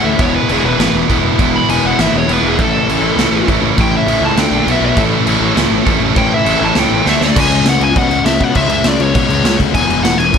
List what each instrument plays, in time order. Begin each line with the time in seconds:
Already playing: overdriven electric guitar A2 E3 A3 C#4 E4
0.04 picked electric bass D2, lead electric guitar E5
0.19 picked electric bass E1, distorted electric guitar E2 B2, overdriven electric guitar E3 G#3 B3 E4, lead electric guitar C#5, kick, crash
0.35 lead electric guitar B4
0.48 picked electric bass E1, distorted electric guitar E2 B2, overdriven electric guitar E3 G#3 B3 E4, crash
0.53 lead electric guitar G#4
0.64 picked electric bass E1, lead electric guitar B4
0.78 picked electric bass G#1, distorted electric guitar E2 B2, overdriven electric guitar E3 G#3 B3 E4, snare, crash
0.93 picked electric bass E1
1.08 picked electric bass E1, distorted electric guitar E2 B2, overdriven electric guitar E3 G#3 B3 E4, kick, crash
1.23 picked electric bass E1
1.39 picked electric bass E1, distorted electric guitar E2 B2, overdriven electric guitar E3 G#3 B3 E4, kick, crash
1.56 lead electric guitar B5
1.69 picked electric bass E1, distorted electric guitar E2 B2, overdriven electric guitar E3 G#3 B3 E4, lead electric guitar G#5, crash
1.84 picked electric bass E1, lead electric guitar F#5
1.99 picked electric bass G#1, distorted electric guitar E2 B2, overdriven electric guitar E3 G#3 B3 E4, lead electric guitar E5, snare, crash
2.14 picked electric bass E1
2.18 lead electric guitar C#5
2.28 picked electric bass E1, distorted electric guitar E2 B2, overdriven electric guitar E3 G#3 B3 E4, crash
2.33 lead electric guitar B4
2.43 picked electric bass E1
2.48 lead electric guitar G#4
2.59 picked electric bass A1, overdriven electric guitar A2 E3 A3 C#4 E4, lead electric guitar A4, kick, crash
2.87 picked electric bass A1, overdriven electric guitar A2 E3 A3 C#4 E4, crash
3.00 picked electric bass A1
3.16 picked electric bass C#2, overdriven electric guitar A2 E3 A3 C#4 E4, snare, crash
3.31 picked electric bass A1
3.48 picked electric bass A1, overdriven electric guitar A2 E3 A3 C#4 E4, kick, crash
3.62 picked electric bass A1
3.77 picked electric bass A1, overdriven electric guitar A2 E3 A3 C#4 E4, kick, crash
3.81 lead electric guitar G5
3.97 lead electric guitar E5
4.06 picked electric bass A1, overdriven electric guitar A2 E3 A3 C#4 E4, crash
4.21 picked electric bass C#2
4.25 lead electric guitar A5
4.35 picked electric bass D2, overdriven electric guitar D3 A3 D4 A4, lead electric guitar G5, snare, crash
4.51 picked electric bass A#1
4.66 picked electric bass B1, overdriven electric guitar B2 F#3 B3 F#4, crash
4.71 lead electric guitar E5
4.81 picked electric bass B1
4.85 lead electric guitar E5
4.97 picked electric bass A1, overdriven electric guitar A2 E3 A3 C#4 E4 A4, kick, crash
5.26 picked electric bass A1, overdriven electric guitar A2 E3 A3 C#4 E4 A4, crash
5.40 picked electric bass A1
5.56 picked electric bass C#2, overdriven electric guitar A2 E3 A3 C#4 E4 A4, snare, crash
5.70 picked electric bass A1
5.86 picked electric bass A1, overdriven electric guitar A2 E3 A3 C#4 E4 A4, kick, crash
6.00 picked electric bass A1
6.16 picked electric bass A1, overdriven electric guitar A2 E3 A3 C#4 E4 A4, lead electric guitar G5, kick, crash
6.34 lead electric guitar E5
6.46 picked electric bass A1, overdriven electric guitar A2 E3 A3 C#4 E4 A4, crash
6.61 picked electric bass A1, lead electric guitar A5
6.75 picked electric bass C#2, overdriven electric guitar A2 E3 A3 C#4 E4 A4, snare, crash
6.79 lead electric guitar G5
6.91 picked electric bass A1
7.05 picked electric bass D2, overdriven electric guitar D3 A3 D4 A4, snare
7.09 lead electric guitar E5
7.21 picked electric bass D2, lead electric guitar D5, snare
7.36 picked electric bass C#2, distorted electric guitar C#3 G#3 C#4, kick, crash
7.40 lead electric guitar G#5
7.50 picked electric bass C#2, crash
7.65 picked electric bass C#2, snare, crash
7.70 lead electric guitar F#5
7.80 picked electric bass C#2, lead electric guitar G#5, crash
7.96 picked electric bass B2, distorted electric guitar C#3 G#3 C#4, lead electric guitar F#5, kick, crash
8.10 picked electric bass C#2, crash
8.24 picked electric bass C#2, lead electric guitar E5, snare, crash
8.40 picked electric bass B2, lead electric guitar F#5, kick, crash
8.55 picked electric bass C#2, distorted electric guitar C#3 G#3, lead electric guitar E5, kick, crash
8.59 distorted electric guitar C#4
8.69 picked electric bass C#2, lead electric guitar E5, crash
8.84 picked electric bass C#2, lead electric guitar D5, snare, crash
9.00 picked electric bass C#2, lead electric guitar C#5, crash
9.14 picked electric bass B2, distorted electric guitar C#3 G#3, kick, crash
9.19 distorted electric guitar C#4
9.28 picked electric bass C#2, crash
9.44 picked electric bass C#2, snare, crash
9.60 picked electric bass D2, kick, crash
9.74 picked electric bass E1, distorted electric guitar E2 B2 E3, lead electric guitar G#5, kick, crash
9.89 picked electric bass E1, crash
10.03 picked electric bass E1, lead electric guitar F#5, snare, crash
10.18 picked electric bass E1, lead electric guitar G#5, crash
10.34 picked electric bass D2, distorted electric guitar E2, kick, crash